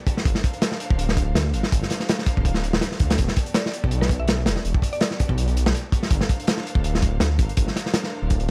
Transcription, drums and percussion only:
0.07 kick, closed hi-hat
0.17 snare
0.25 kick, closed hi-hat
0.35 snare
0.44 kick, closed hi-hat
0.53 closed hi-hat
0.62 snare, closed hi-hat
0.72 snare
0.80 closed hi-hat
0.90 kick
0.99 closed hi-hat
1.09 snare
1.17 kick, closed hi-hat
1.35 snare, closed hi-hat
1.54 closed hi-hat
1.63 snare
1.72 kick, closed hi-hat
1.83 snare
1.90 snare, closed hi-hat
2.00 snare
2.09 snare, closed hi-hat
2.19 snare
2.26 kick, closed hi-hat
2.37 kick
2.45 kick, closed hi-hat
2.55 snare
2.64 closed hi-hat
2.73 snare
2.81 snare, closed hi-hat
2.92 snare
2.99 kick, closed hi-hat
3.10 snare, closed hi-hat
3.18 kick, closed hi-hat
3.28 snare
3.36 kick, closed hi-hat
3.46 closed hi-hat
3.54 snare, closed hi-hat
3.66 snare
3.73 closed hi-hat
3.84 kick
3.91 closed hi-hat
4.02 snare
4.09 kick, closed hi-hat
4.28 snare, closed hi-hat
4.46 snare, closed hi-hat
4.56 snare
4.65 closed hi-hat
4.74 kick
4.82 kick, closed hi-hat
4.93 closed hi-hat
5.01 snare, closed hi-hat
5.11 snare
5.20 kick, closed hi-hat
5.29 kick
5.38 closed hi-hat
5.48 closed hi-hat
5.57 closed hi-hat
5.66 snare
5.74 closed hi-hat
5.92 kick, closed hi-hat
6.03 snare
6.10 kick, closed hi-hat
6.21 snare
6.29 kick, closed hi-hat
6.40 closed hi-hat
6.47 snare, closed hi-hat
6.57 snare
6.67 closed hi-hat
6.75 kick
6.84 closed hi-hat
6.95 snare
7.02 kick, closed hi-hat
7.20 snare, closed hi-hat
7.39 kick, closed hi-hat
7.49 closed hi-hat
7.57 kick, closed hi-hat
7.68 snare
7.76 snare, closed hi-hat
7.86 snare
7.94 snare, closed hi-hat
8.04 snare
8.30 kick, closed hi-hat
8.40 closed hi-hat

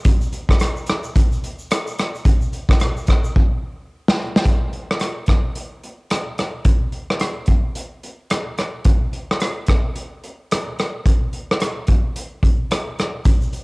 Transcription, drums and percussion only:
0.05 kick, closed hi-hat, shaker
0.21 shaker
0.33 closed hi-hat, shaker
0.49 kick, cross-stick, shaker
0.60 cross-stick, closed hi-hat, shaker
0.76 shaker
0.86 cross-stick, closed hi-hat, shaker
1.03 shaker
1.16 kick, closed hi-hat, shaker
1.32 shaker
1.44 closed hi-hat, shaker
1.59 shaker
1.71 cross-stick, closed hi-hat, shaker
1.87 shaker
1.99 cross-stick, closed hi-hat, shaker
2.15 shaker
2.25 kick, closed hi-hat, shaker
2.41 shaker
2.53 closed hi-hat, shaker
2.69 kick, cross-stick, shaker
2.80 cross-stick, closed hi-hat, shaker
2.97 shaker
3.07 kick, cross-stick, closed hi-hat, shaker
3.24 shaker
3.36 kick
4.08 snare
4.36 snare
4.45 kick, closed hi-hat
4.73 closed hi-hat
4.91 cross-stick
4.99 cross-stick, closed hi-hat
5.26 kick, cross-stick, closed hi-hat
5.55 closed hi-hat
5.83 closed hi-hat
6.10 cross-stick, closed hi-hat
6.38 cross-stick, closed hi-hat
6.65 kick, closed hi-hat
6.92 closed hi-hat
7.10 cross-stick
7.20 cross-stick, closed hi-hat
7.46 kick, closed hi-hat
7.75 closed hi-hat
8.03 closed hi-hat
8.30 cross-stick, closed hi-hat
8.58 cross-stick, closed hi-hat
8.84 kick, closed hi-hat
9.13 closed hi-hat
9.31 cross-stick
9.40 cross-stick, closed hi-hat
9.66 kick, cross-stick, closed hi-hat
9.96 closed hi-hat
10.24 closed hi-hat
10.51 cross-stick, closed hi-hat
10.79 cross-stick, closed hi-hat
11.06 kick, closed hi-hat
11.33 closed hi-hat
11.51 cross-stick
11.60 cross-stick, closed hi-hat
11.87 kick, closed hi-hat
12.16 closed hi-hat
12.43 kick, closed hi-hat
12.71 cross-stick, closed hi-hat
12.99 cross-stick, closed hi-hat
13.25 kick, closed hi-hat, shaker
13.41 shaker
13.53 closed hi-hat, shaker

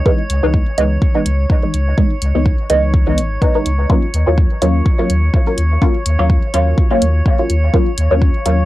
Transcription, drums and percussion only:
0.06 kick
0.30 closed hi-hat
0.54 kick
0.78 closed hi-hat
1.02 kick
1.26 closed hi-hat
1.50 kick
1.74 closed hi-hat
1.98 kick
2.22 closed hi-hat
2.46 kick
2.70 closed hi-hat
2.94 kick
3.18 closed hi-hat
3.42 kick, closed hi-hat
3.66 closed hi-hat
3.90 kick
4.14 closed hi-hat
4.38 kick
4.62 closed hi-hat
4.86 kick
5.10 closed hi-hat
5.34 kick
5.58 closed hi-hat
5.82 kick
6.06 closed hi-hat
6.30 kick
6.54 closed hi-hat
6.78 kick
7.02 closed hi-hat
7.26 kick
7.50 closed hi-hat
7.74 kick
7.98 closed hi-hat
8.22 kick
8.46 closed hi-hat

